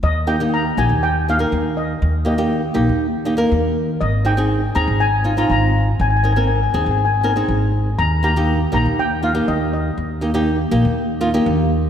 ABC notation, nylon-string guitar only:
X:1
M:4/4
L:1/16
Q:1/4=121
K:Eb
V:1 name="Nylon-string guitar"
z2 [B,EG] [B,EG]2 z [B,EG]2 z2 [B,EG] [B,EB]4 z | z2 [B,EG] [B,EG]2 z [B,EG]2 z2 [B,EG] [B,EB]4 z | z2 [CEA] [CEA]2 z [CEA]2 z2 [CEF] [CEF]4 z | z2 [CEB] [CEB]2 z [CEA]2 z2 [CEB] [CEA]4 z |
z2 [B,EG] [B,EG]2 z [B,EG]2 z2 [B,EF] [B,EG]4 z | z2 [B,EG] [B,EG]2 z [B,EG]2 z2 [B,EF] [B,EG]4 z |]